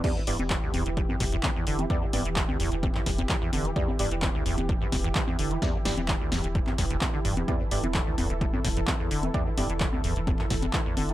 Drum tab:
CC |x---------------|----------------|----------------|----------------|
HH |x-oxx-oxx-oxx-ox|x-oxx-oxx-oxx-ox|x-oxx-oxx-oxx-ox|x-oxx-oxx-oxx-ox|
CP |----x-------x---|----x----x--x---|----x-------x---|----x----x--x---|
SD |----------o-----|----------o-----|----------o-----|o-o---o---o-----|
CG |o--o--o--o--o--o|--o--o--o--o--o-|-o--o--o--o--o--|o--o--o--o--o--o|
BD |o---o---o-o-o---|o---o---o-o-o---|o---o---o-o-o---|o---o---o-o-o---|

CC |----------------|----------------|
HH |x-oxx-oxx-oxx-ox|x-oxx-oxx-oxx-ox|
CP |----x-------x---|----x----x--x---|
SD |----------o-----|----------o-----|
CG |o--o--o--o--o--o|--o--o--o--o--o-|
BD |o---o---o-o-o---|o---o---o-o-o---|